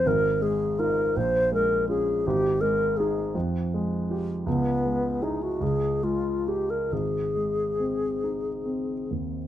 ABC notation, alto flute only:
X:1
M:6/8
L:1/16
Q:3/8=53
K:Ab
V:1 name="Alto flute"
B2 A2 B2 c2 B2 A2 | G2 B2 A2 z6 | _C4 E _G A2 F2 =G B | A8- A2 z2 |]